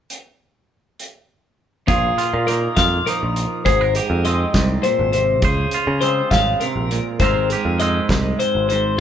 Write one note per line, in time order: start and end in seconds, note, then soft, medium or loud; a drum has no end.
0.10 closed hi-hat soft
0.99 closed hi-hat soft
1.88 2.11 A#1 medium
1.88 3.62 A#2 medium
1.88 2.46 F4 medium
1.88 3.65 G#4 medium
1.88 kick loud
1.88 closed hi-hat medium
2.18 2.77 F4 medium
2.18 closed hi-hat medium
2.34 2.67 A#2 medium
2.47 3.62 A#3 soft
2.47 3.07 D#4 medium
2.47 2.77 A#4 medium
2.47 closed hi-hat medium
2.77 2.99 F2 medium
2.77 3.63 F4 soft
2.77 3.06 F5 medium
2.77 kick medium
2.77 snare medium
2.77 closed hi-hat medium
3.07 3.63 F3 soft
3.07 3.63 D#4 soft
3.07 3.65 A#4 medium
3.07 closed hi-hat medium
3.23 3.45 A#1 medium
3.36 closed hi-hat medium
3.65 3.99 G#1 medium
3.65 4.54 G#2 medium
3.65 3.81 G#4 medium
3.65 3.95 C5 medium
3.65 kick medium
3.65 closed hi-hat medium
3.81 5.44 A#4 medium
3.95 5.40 G4 soft
3.95 4.25 G#4 medium
3.95 closed hi-hat medium
4.10 4.44 F2 medium
4.25 6.02 G#3 medium
4.25 5.47 C4 soft
4.25 4.84 D#5 medium
4.25 closed hi-hat medium
4.54 4.77 C2 medium
4.54 4.84 G#2 soft
4.54 kick medium
4.54 snare medium
4.54 closed hi-hat medium
4.83 5.14 A#2 medium
4.83 5.11 C5 medium
4.83 closed hi-hat soft
4.99 5.42 G#1 medium
5.13 5.44 C3 medium
5.13 5.42 C5 medium
5.13 closed hi-hat soft
5.42 5.65 C#2 medium
5.42 6.31 C#3 medium
5.42 6.02 G#4 medium
5.42 7.18 C5 medium
5.42 kick medium
5.42 closed hi-hat medium
5.71 7.18 F4 medium
5.71 closed hi-hat medium
5.87 6.21 C#3 medium
6.01 7.21 G#3 medium
6.01 7.18 C4 soft
6.01 6.31 C5 medium
6.01 closed hi-hat soft
6.31 6.54 G#1 medium
6.31 6.62 C#3 medium
6.31 6.61 F5 medium
6.31 kick medium
6.31 snare medium
6.31 closed hi-hat medium
6.60 6.91 C3 medium
6.60 7.20 A#4 medium
6.60 closed hi-hat soft
6.76 6.99 A#1 medium
6.91 7.21 A#2 medium
6.91 closed hi-hat soft
7.20 7.54 G#1 medium
7.20 8.69 G#2 medium
7.20 7.80 G#3 soft
7.20 7.80 C4 medium
7.20 7.51 G4 soft
7.20 7.50 C5 medium
7.20 kick medium
7.20 closed hi-hat medium
7.24 9.00 A#4 medium
7.50 8.96 G4 soft
7.50 7.80 G#4 medium
7.50 closed hi-hat medium
7.65 7.99 F2 medium
7.80 9.00 G#3 medium
7.80 8.96 C4 medium
7.80 8.39 D#5 medium
7.80 closed hi-hat medium
8.09 8.32 C2 medium
8.09 kick medium
8.09 snare medium
8.09 closed hi-hat medium
8.39 8.68 C5 medium
8.39 closed hi-hat soft
8.55 8.99 G#1 medium
8.69 8.99 G#2 medium
8.69 8.99 C5 medium
8.69 closed hi-hat soft